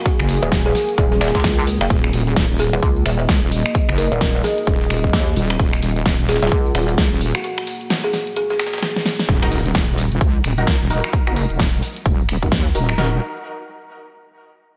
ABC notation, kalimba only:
X:1
M:4/4
L:1/16
Q:"Swing 16ths" 1/4=130
K:Ebm
V:1 name="Kalimba"
G z4 A2 z A A z6 | z6 A A z8 | z2 B B z2 A6 z4 | z6 A A z6 z G |
G z4 A2 z A A z6 | z16 | z16 | z16 |]